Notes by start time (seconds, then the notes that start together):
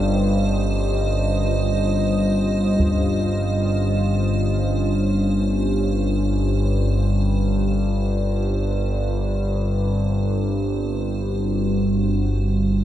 Already playing: G1 G2 G3 C#4 F4 C5 D#5
2.79 taiko
9.31 C4
10.85 F#4
11.29 D5